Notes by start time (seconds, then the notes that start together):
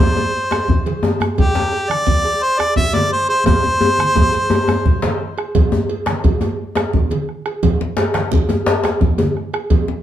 Already playing: C5
0.00 bombo low, djembe bass
0.16 bombo rim, cowbell, djembe slap, djembe tone
0.51 bombo rim, cowbell, djembe slap, djembe tone
0.68 bombo low, high conga, low conga, djembe bass
0.86 cowbell, djembe slap, high conga
1.03 bombo rim, djembe tone
1.20 bombo rim, cowbell, djembe tone
1.38 G4, bombo low, cowbell, high conga, low conga, djembe bass
1.55 djembe slap, djembe tone
1.73 cowbell
1.90 D5, bombo rim, high conga
2.07 bombo low, low conga, djembe bass
2.25 bombo rim, cowbell
2.43 C5
2.59 D5, bombo rim, cowbell, djembe tone
2.76 E5, bombo low, high conga, low conga, djembe bass
2.93 D5, cowbell, djembe slap, high conga, djembe tone
3.12 C5
3.29 C5, cowbell
3.46 C5, bombo low, cowbell, djembe tone, low conga, djembe bass
3.64 djembe slap, djembe tone
3.81 cowbell, djembe slap, djembe tone
3.99 bombo rim, high conga
4.15 bombo rim, bombo low, cowbell, djembe tone, high conga, low conga, djembe bass
4.33 bombo rim, cowbell, djembe slap
4.50 djembe tone
4.68 bombo rim, cowbell, djembe tone
4.86 bombo low, djembe slap, low conga, djembe bass
5.02 cowbell, djembe slap, high conga
5.21 djembe slap
5.38 bombo rim, cowbell
5.55 bombo low, cowbell, high conga, low conga, djembe bass
5.72 djembe slap, djembe tone
5.89 cowbell
6.06 bombo rim, djembe slap, high conga
6.24 bombo low, cowbell, low conga, djembe bass
6.41 bombo rim, cowbell, djembe slap, djembe tone
6.75 bombo rim, cowbell, djembe slap, djembe tone
6.93 bombo low, high conga, low conga, djembe bass
7.11 cowbell, djembe slap, high conga
7.29 bombo rim
7.46 bombo rim, cowbell
7.63 bombo low, cowbell, high conga, low conga, djembe bass
7.81 djembe slap, djembe tone
7.97 cowbell, djembe slap
8.14 bombo rim, djembe slap, high conga
8.32 bombo low, cowbell, low conga, djembe bass
8.49 bombo rim, cowbell, djembe slap, djembe tone
8.66 djembe slap
8.84 bombo rim, cowbell, djembe slap, djembe tone
9.01 bombo low, high conga, low conga, djembe bass
9.18 cowbell, djembe slap, djembe tone, high conga
9.37 bombo rim
9.54 bombo rim, cowbell
9.70 bombo low, cowbell, high conga, djembe bass, low conga
9.88 djembe slap, djembe tone